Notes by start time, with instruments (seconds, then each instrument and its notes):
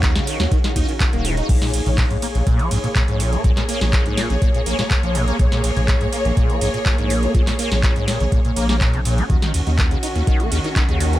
Already playing: sub bass D#2, string section D#3 C#4 F#4, ambient pad D#4 G#4 C#5 F5
0.03 acid bass D#3, kick, clap, closed hi-hat
0.15 acid bass C#3, snare, closed hi-hat
0.27 acid bass D#3, open hi-hat, ride
0.40 sub bass D#2, acid bass F#3, snare, closed hi-hat
0.52 acid bass D#3, kick, closed hi-hat
0.64 acid bass D#3, snare, closed hi-hat
0.76 sub bass D#2, acid bass D#4, kick, open hi-hat, ride
0.89 acid bass D#3, closed hi-hat
1.00 acid bass D#2, kick, clap, closed hi-hat
1.13 sub bass D#1, acid bass A#3, closed hi-hat
1.25 acid bass D#3, open hi-hat, ride
1.37 acid bass D#4, closed hi-hat
1.49 sub bass A#1, acid bass A#2, string section A#3 G#4 C#5, kick, closed hi-hat, crash
1.62 acid bass A#2, snare, closed hi-hat
1.74 acid bass A#1, open hi-hat, ride
1.86 sub bass A#1, acid bass A#2, closed hi-hat
1.98 acid bass A#2, kick, clap, closed hi-hat
2.10 acid bass G#2, closed hi-hat
2.22 acid bass A#3, open hi-hat, ride
2.35 acid bass A#1, sub bass A#1, closed hi-hat
2.47 acid bass A#2, kick, closed hi-hat
2.59 acid bass F3, closed hi-hat
2.71 sub bass A#1, acid bass G#2, open hi-hat, ride
2.84 acid bass A#2, closed hi-hat
2.96 acid bass A#2, kick, clap, closed hi-hat
3.08 sub bass A#1, acid bass G#2, closed hi-hat
3.20 acid bass A#2, open hi-hat, ride
3.33 acid bass A#3, closed hi-hat
3.44 sub bass A#1, acid bass A#2, kick, closed hi-hat
3.57 acid bass A#2, snare, clap, closed hi-hat
3.69 acid bass A#3, open hi-hat, ride
3.81 sub bass A#1, acid bass A#2, snare, closed hi-hat
3.93 acid bass A#2, kick, clap, closed hi-hat
4.06 acid bass G#2, closed hi-hat
4.17 acid bass A#2, snare, open hi-hat, ride
4.30 sub bass A#1, acid bass C#3, closed hi-hat
4.42 acid bass A#2, kick, closed hi-hat
4.54 acid bass A#2, closed hi-hat
4.66 sub bass A#1, acid bass A#3, open hi-hat, ride
4.79 acid bass A#2, snare, closed hi-hat
4.91 acid bass A#1, kick, clap, closed hi-hat
5.03 sub bass A#1, acid bass F3, closed hi-hat
5.15 acid bass A#2, open hi-hat, ride
5.28 acid bass A#3, closed hi-hat
5.39 sub bass A#1, acid bass A#2, kick, closed hi-hat
5.52 acid bass A#2, snare, closed hi-hat
5.64 acid bass A#1, open hi-hat, ride
5.76 sub bass A#1, acid bass A#2, closed hi-hat
5.88 acid bass A#2, kick, clap, closed hi-hat
6.01 acid bass G#2, closed hi-hat
6.13 acid bass A#3, open hi-hat, ride
6.25 acid bass A#1, sub bass A#1, closed hi-hat
6.37 acid bass A#2, kick, closed hi-hat
6.50 acid bass F3, closed hi-hat
6.61 sub bass A#1, acid bass G#2, open hi-hat, ride
6.74 acid bass A#2, closed hi-hat
6.86 acid bass A#2, kick, clap, closed hi-hat
6.98 sub bass A#1, acid bass G#2, closed hi-hat
7.10 acid bass A#2, open hi-hat, ride
7.23 acid bass A#3, closed hi-hat
7.35 sub bass A#1, acid bass A#2, kick, closed hi-hat
7.47 acid bass A#2, snare, clap, open hi-hat
7.59 acid bass A#3, open hi-hat, ride
7.72 sub bass A#1, acid bass A#2, snare, closed hi-hat
7.83 acid bass A#2, kick, clap, closed hi-hat
7.96 acid bass G#2, closed hi-hat
8.08 acid bass A#2, snare, open hi-hat, ride
8.20 sub bass A#1, acid bass C#3, closed hi-hat
8.32 acid bass A#2, kick, closed hi-hat
8.45 acid bass A#2, closed hi-hat
8.56 sub bass A#1, acid bass A#3, open hi-hat, ride
8.69 acid bass A#3, snare, closed hi-hat
8.81 acid bass A#2, kick, clap, closed hi-hat
8.94 sub bass A#1, acid bass C3, closed hi-hat
9.05 acid bass A#2, open hi-hat, ride
9.18 acid bass C#4, closed hi-hat
9.30 sub bass D#2, acid bass D#3, string section D#3 C#4 F#4, kick, closed hi-hat
9.42 acid bass D#3, snare, closed hi-hat
9.54 acid bass D#2, open hi-hat, ride
9.67 sub bass D#2, acid bass D#3, closed hi-hat
9.78 acid bass D#3, kick, clap, closed hi-hat
9.91 acid bass C#3, closed hi-hat
10.03 acid bass D#4, open hi-hat, ride
10.15 acid bass D#2, sub bass D#2, closed hi-hat
10.27 acid bass D#3, kick, closed hi-hat
10.40 acid bass A#3, closed hi-hat
10.52 sub bass D#2, acid bass C#3, open hi-hat, ride
10.64 acid bass D#3, closed hi-hat
10.76 acid bass D#3, kick, clap, closed hi-hat
10.89 sub bass D#2, acid bass C#3, closed hi-hat
11.00 acid bass D#3, open hi-hat, ride
11.13 acid bass D#4, closed hi-hat